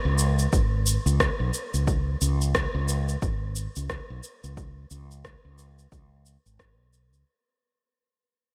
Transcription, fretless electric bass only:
0.05 C#2
0.53 G#1
1.06 C#2
1.40 B1
1.74 C#2
2.21 C#2
2.74 C#2
3.22 G#1
3.77 C#2
4.10 B1
4.44 C#2
4.91 C#2
5.45 C#2
5.92 C#2
6.46 G#1
6.79 B1
7.13 C#2

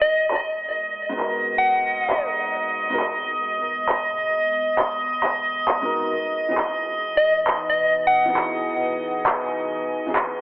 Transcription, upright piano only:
1.09 G#2 B3 D#4
1.15 F#4 A#4
2.90 G#2 B3 D#4 F#4
2.94 A#4
5.81 G#2 B3 D#4 F#4 A#4
6.49 E3 B3 D#4 F#4 G#4
8.25 E3 B3
8.29 D#4 F#4 G#4
10.06 E3 B3 D#4 F#4 G#4

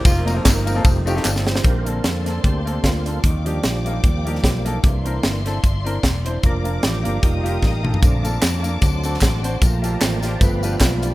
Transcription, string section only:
1.63 D5 F5 A5 C6
3.23 D5 G5 D6
4.84 D5 E5 C6
6.43 F5 A#5 D6
7.23 G5 D#6
8.02 A5 D6
8.82 F#5 C6
9.63 F5 G5 A5 A#5
10.41 D5 B5

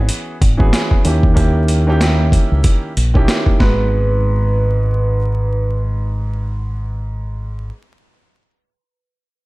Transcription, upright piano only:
Already playing: E3 B3 C#4 F#4 G#4
0.57 E3 B3 C#4 F#4 G#4
1.04 D#3 A#3 C#4 E4 G4
1.34 D#3 A#3 C#4 E4 G4
1.87 D#3 A#3 C#4 E4 G4
1.99 D#3 A#3 C#4 E4 G4
3.14 D#3 A#3 C#4 E4 G4
3.59 G#2 G#3 B3 F#4 B4

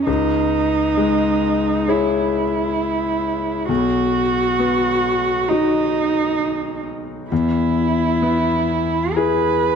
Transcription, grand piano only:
Already playing: G#4 C#5
0.07 C#2
0.97 G#3
1.88 G#4 C#5
3.69 B1
4.59 B3
5.51 D#4 F#4
7.32 E2
8.22 B3
9.16 E4 G#4

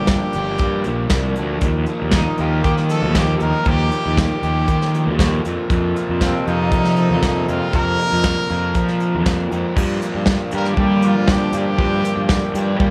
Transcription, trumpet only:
0.10 G4
2.14 D#4
2.41 F4
2.63 G4
2.90 A4
3.17 G4
3.37 A4
3.42 A#4
3.68 G4
4.20 G4
6.25 C4
6.47 D#4
7.49 F4
7.75 A#4
10.56 A#4
10.68 G4
10.80 G4
11.05 F4
11.31 G4
11.57 G4

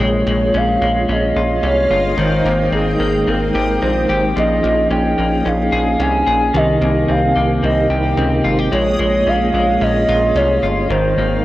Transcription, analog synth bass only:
0.00 A#1
0.27 A#1
0.54 A#1
0.82 A#1
1.09 A#1
1.36 A#1
1.63 C2
1.90 G1
2.18 G#1
2.45 G#1
2.72 G#1
3.00 G#1
3.28 G#1
3.55 G#1
3.82 A#1
4.10 G#1
4.37 A#1
4.64 A#1
4.91 A#1
5.19 A#1
5.46 A#1
5.72 A#1
6.00 C2
6.27 A#1
6.54 C2
6.81 C2
7.09 C2
7.36 C2
7.63 C2
7.90 C2
8.18 C#2
8.45 G#1
8.72 A#1
8.99 A#1
9.27 A#1
9.54 A#1
9.81 A#1
10.08 A#1
10.35 C2
10.63 G1
10.90 G#1
11.18 G#1

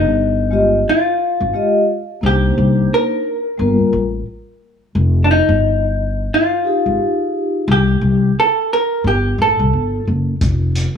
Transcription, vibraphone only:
0.51 G#3 F4 G4 D#5
1.53 G#3 F4 G4 D#5
2.21 A#3 D4 D#4 C5
3.58 G3 A#3 F4 A#4
6.64 D#4 F4 G4 G#4

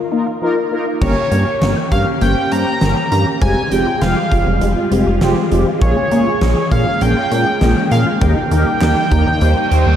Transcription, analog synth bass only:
1.02 G1
1.32 G2
1.62 G1
1.92 G2
2.22 G1
2.52 G2
2.82 G1
3.12 G2
3.42 F1
3.72 F1
4.02 F1
4.32 F1
4.47 F1
4.62 F1
4.92 F1
5.07 F1
5.22 F1
5.52 F1
5.81 A#1
6.12 A#2
6.42 A#1
6.72 A#2
7.02 A#1
7.32 A#2
7.61 A#1
7.91 A#2
8.22 D#2
8.51 D#2
8.82 D#2
9.12 D#2
9.27 D#2
9.42 D#2
9.71 D#2
9.87 D#2

